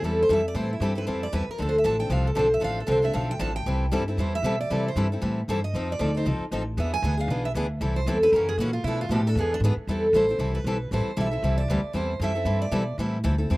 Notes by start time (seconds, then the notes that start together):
0.03 E2 E3 G3 C4 E4 A4
0.23 C5
0.29 F2 E3 G3 C4 E4 A4 E5
0.48 D5
0.54 A2 E3 G3 C4 E4 A4 C5
0.73 E4
0.80 G2 E3 G3 C4 E4 G4 A4
0.96 C4 E4 B4
1.07 F2 E3 G3 C4 E4 A4 C5
1.23 D5
1.33 E2 E3 G3 C4 E4 A4 B4
1.48 A#4, muted upright bass stroke
1.58 D2 D3 F3 C4 D4 A4
1.69 C5
1.78 E5
1.84 A1 D3 F3 C4 D4 A4 A5
1.99 C4 D4 A4 G5
2.10 C2 D3 F3 C4 D4 A4 F5
2.27 A4
2.35 B1 D3 F3 C4 D4 A4 C5
2.54 E5
2.60 A1 D3 F3 C4 D4 A4
2.64 F5
2.80 A4
2.87 C2 D3 F3 C4 D4 A4
2.92 C5
3.02 C4 D4 A4 E5
3.13 B1 D3 F3 C4 D4 A4 F5
3.31 G5
3.39 A1 D3 F3 C4 D4 A4 A5
3.56 G5
3.66 C2 E3 G3 C4 E4 A4
3.92 G2 E3 G3 C4 E4 A4
4.08 C4 E4 A4
4.17 E2 E3 G3 C4 E4 A4 C5
4.35 E5
4.43 B2 E3 G3 C4 E4 A4
4.61 D5
4.70 C3 E3 G3 C4 E4 A4
4.88 C5
4.96 G2 E3 G3 C4 E4 A4
5.12 C4 E4 A4
5.22 A2 E3 G3 C4 E4 A4
5.48 G2 E3 G3 C4 E4 A4 C5
5.64 D#5
5.74 F2 F3 C4 D#4 A4
5.92 D5
5.99 D2 F3 C4 D#4 A4
6.15 C4 D#4 A4 C5
6.25 C2 F3 C4 D#4 A4
6.39 muted upright bass stroke
6.51 A1 F3 C4 D#4 A4
6.77 E2 E3 B3 D4 G#4 E5
6.94 G#5
7.02 D2 E3 B3 D4 G#4
7.17 B3 D4 G#4 F5
7.28 B1 E3 B3 D4 G#4
7.45 E5
7.55 D2 E3 B3 D4 G#4
7.81 C2 E3 G3 C4 E4 A4
7.96 C5
8.06 E2 E3 G3 C4 E4 A4
8.23 C4 E4 A4 B4
8.32 F#2 C#3 E3 A#3 C#4 F#4 A#4
8.49 G#4
8.57 A#2 C#3 E3 A#3 C#4 F#4
8.73 F4
8.84 B2 F3 A3 D4 E4
8.88 A4
9.01 F4
9.09 A2 B2 F3 A3 D4 G4 A4
9.27 A3 D4 A4
9.35 E2 E3 B3 D4 G#4
9.40 G#4
9.54 D4
9.60 G#2 E3
9.65 B3 D4 G#4
9.76 muted upright bass stroke
9.87 E2 E3 G3 C4 E4 A4
10.13 A1 E3 G3 C4 E4 A4 C5
10.30 C4 E4
10.39 C2 E3 G3 C4 E4 A4
10.55 B4
10.64 B1 E3 G3 C4 E4 A4
10.91 A1 E3 G3 C4 E4 A4 C5
11.06 muted upright bass stroke
11.17 B1 E3 G3 C4 E4 A4 E5
11.31 C4 E4 A4
11.43 C2 E3 G3 C4 E4 A4
11.58 D5
11.68 D2 E3 G3 C4 E4 A4
11.83 muted upright bass stroke
11.93 E2 E3 G3 C4 E4 A4 C5
12.20 F#2 E3 G3 C4 E4 A4
12.24 E5
12.35 C4 E4 A4
12.45 G2 E3 G3 C4 E4 A4
12.62 D5
12.71 B2 E3 G3 C4 E4 A4
12.98 A2 E3 G3 C4 E4 A4
13.24 D2 E3 G3 C4 E4 A4
13.38 C4 E4 A4
13.50 E2 E3 G3 C4 E4 A4 C5